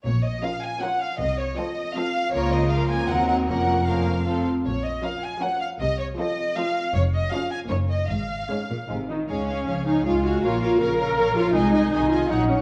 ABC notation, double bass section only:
X:1
M:3/4
L:1/8
Q:1/4=158
K:Bbm
V:1 name="Double bass section" clef=bass
B,,,2 z4 | C,,2 z4 | D,,4 E,,2 | F,,,4- F,,, z |
B,,,2 z4 | C,,2 z4 | [K:Db] F,,,2 z2 G,,,2 | A,,,2 z2 A,,,2 |
D,,2 D,,2 D,,2 | B,,,2 B,,,2 B,,,2 | C,,2 C,,2 B,,,2 |]